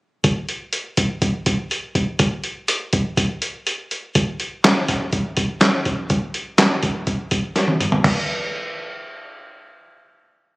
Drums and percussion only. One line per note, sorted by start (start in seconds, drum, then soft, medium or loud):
0.24 kick medium
0.24 closed hi-hat medium
0.49 closed hi-hat medium
0.73 closed hi-hat medium
0.97 kick medium
0.97 closed hi-hat medium
1.22 kick medium
1.22 closed hi-hat medium
1.46 kick medium
1.46 closed hi-hat medium
1.71 closed hi-hat medium
1.95 kick medium
1.95 closed hi-hat medium
2.19 kick medium
2.19 closed hi-hat medium
2.44 closed hi-hat soft
2.68 closed hi-hat medium
2.93 kick medium
2.93 closed hi-hat medium
3.17 kick medium
3.17 closed hi-hat medium
3.42 closed hi-hat medium
3.67 closed hi-hat medium
3.91 closed hi-hat medium
4.15 kick medium
4.15 closed hi-hat medium
4.40 closed hi-hat medium
4.64 snare loud
4.64 clap medium
4.64 closed hi-hat medium
4.88 kick medium
4.88 snare soft
4.88 closed hi-hat medium
5.13 kick medium
5.13 closed hi-hat medium
5.37 kick medium
5.37 closed hi-hat medium
5.61 snare medium
5.61 clap medium
5.61 closed hi-hat medium
5.85 kick medium
5.85 closed hi-hat medium
6.10 kick medium
6.10 closed hi-hat medium
6.34 closed hi-hat medium
6.58 snare loud
6.58 clap medium
6.58 closed hi-hat medium
6.83 kick medium
6.83 closed hi-hat medium
7.07 kick medium
7.07 closed hi-hat medium
7.31 kick medium
7.31 closed hi-hat medium
7.56 snare soft
7.56 closed hi-hat medium
7.68 high tom medium
7.80 closed hi-hat medium
7.80 mid tom medium
7.92 floor tom medium
8.04 kick medium
8.04 floor tom medium
8.04 crash medium